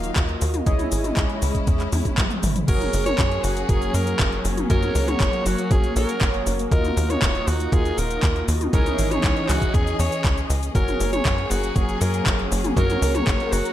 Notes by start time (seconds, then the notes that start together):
Already playing: D#1 D#3 F#3 A#3 F4 F#4 A#4 D#5 F5
0.04 closed hi-hat, cabasa
0.16 D#2, kick, clap, closed hi-hat, cabasa
0.29 closed hi-hat
0.41 D#2, open hi-hat, cabasa
0.54 closed hi-hat, high tom, cabasa
0.66 C#2 G#3 C#4 E4 G#4 C#5 D#5, kick, closed hi-hat, cabasa
0.79 closed hi-hat, high tom, cabasa
0.92 G#1, open hi-hat, cabasa
1.04 closed hi-hat, high tom, cabasa
1.17 C#2, kick, clap, closed hi-hat, cabasa
1.30 closed hi-hat
1.42 C#2, open hi-hat, cabasa
1.55 kick, closed hi-hat, cabasa
1.67 E2, kick, closed hi-hat, cabasa
1.80 clap, closed hi-hat, cabasa
1.92 E2, open hi-hat, high tom, cabasa
2.05 kick, closed hi-hat, high tom, cabasa
2.18 G#1, kick, clap, closed hi-hat, mid tom, cabasa
2.30 closed hi-hat, mid tom, cabasa
2.43 G#1, mid tom, open hi-hat, cabasa
2.56 closed hi-hat, mid tom, cabasa
2.68 F#1 F#3 A#3 C#4 F#4 G#4 A#4 C#5, kick, closed hi-hat, crash, cabasa
2.81 closed hi-hat, high tom, cabasa
2.93 F#1, open hi-hat, cabasa
3.06 C#5, closed hi-hat, high tom, cabasa
3.19 F#2, kick, clap, closed hi-hat, cabasa
3.32 closed hi-hat
3.44 F#1 F#4, open hi-hat, cabasa
3.57 closed hi-hat, cabasa
3.69 F#1 F#4 G#4 A#4 C#5, kick, closed hi-hat, cabasa
3.82 closed hi-hat, cabasa
3.94 F#2 A#4, open hi-hat, cabasa
4.07 closed hi-hat, cabasa
4.19 F#1, kick, clap, closed hi-hat, cabasa
4.32 closed hi-hat
4.45 F#1, open hi-hat, cabasa
4.58 closed hi-hat, high tom, cabasa
4.70 F#2 F#4 G#4 A#4 C#5, kick, closed hi-hat, cabasa
4.83 closed hi-hat, high tom, cabasa
4.95 C#2, open hi-hat, cabasa
5.08 C#5, closed hi-hat, high tom, cabasa
5.20 F#1, kick, clap, closed hi-hat, cabasa
5.33 closed hi-hat
5.46 F#1 F#4, open hi-hat, cabasa
5.58 closed hi-hat, cabasa
5.71 A#1 G#4, kick, closed hi-hat, cabasa
5.84 closed hi-hat, cabasa
5.96 A#1 F#4 G#4 A#4 C#5, open hi-hat, cabasa
6.09 closed hi-hat, cabasa
6.21 F#1, kick, clap, closed hi-hat, cabasa
6.34 closed hi-hat
6.46 F#1, open hi-hat, cabasa
6.59 closed hi-hat, cabasa
6.71 D#2 D#4 F4 F#4 A#4 D#5, kick, closed hi-hat, cabasa
6.85 closed hi-hat, high tom, cabasa
6.97 D#2, open hi-hat, cabasa
7.10 C#5, closed hi-hat, high tom, cabasa
7.22 D#1, kick, clap, closed hi-hat, cabasa
7.35 closed hi-hat
7.47 D#2 F#4, open hi-hat, cabasa
7.60 closed hi-hat, cabasa
7.72 D#2 F4 F#4 G#4 A#4 D#5, kick, closed hi-hat, cabasa
7.85 closed hi-hat, cabasa
7.98 D#1 A#4, open hi-hat, cabasa
8.11 closed hi-hat, cabasa
8.23 D#2, kick, clap, closed hi-hat, cabasa
8.36 closed hi-hat
8.48 D#2, open hi-hat, cabasa
8.61 closed hi-hat, high tom, cabasa
8.73 C#2 E3 C#4 D#4 E4 G#4 A#4 C#5 D#5, kick, closed hi-hat, cabasa
8.86 closed hi-hat, high tom, cabasa
8.99 G#1, open hi-hat, cabasa
9.11 C#5, closed hi-hat, high tom, cabasa
9.24 C#2, kick, clap, closed hi-hat, cabasa
9.37 closed hi-hat
9.49 C#2 F#4, clap, open hi-hat, cabasa
9.61 kick, closed hi-hat, cabasa
9.74 E2 G#4, kick, closed hi-hat, cabasa
9.87 closed hi-hat, cabasa
9.99 E2 C#5, open hi-hat, cabasa
10.12 closed hi-hat, cabasa
10.24 C#2, kick, clap, closed hi-hat, cabasa
10.38 closed hi-hat, cabasa
10.50 C#2, open hi-hat, cabasa
10.63 closed hi-hat, cabasa
10.75 F#1 F#3 A#3 C#4 F#4 G#4 A#4 C#5, kick, closed hi-hat, cabasa
10.88 closed hi-hat, high tom, cabasa
11.00 F#1, open hi-hat, cabasa
11.13 C#5, closed hi-hat, high tom, cabasa
11.25 F#2, kick, clap, closed hi-hat, cabasa
11.38 closed hi-hat
11.51 F#1 F#4, open hi-hat, cabasa
11.63 closed hi-hat, cabasa
11.76 F#1 F#4 G#4 A#4 C#5, kick, closed hi-hat, cabasa
11.89 closed hi-hat, cabasa
12.01 F#2 A#4, open hi-hat, cabasa
12.14 closed hi-hat, cabasa
12.26 F#1, kick, clap, closed hi-hat, cabasa
12.39 closed hi-hat
12.51 F#1, open hi-hat, cabasa
12.64 closed hi-hat, high tom, cabasa
12.77 F#2 F#4 G#4 A#4 C#5, kick, closed hi-hat, cabasa
12.90 closed hi-hat, high tom, cabasa
13.02 C#2, open hi-hat, cabasa
13.15 C#5, closed hi-hat, high tom, cabasa
13.27 F#1, kick, clap, closed hi-hat, cabasa
13.40 closed hi-hat
13.52 F#1 F#4, open hi-hat, cabasa
13.65 closed hi-hat, cabasa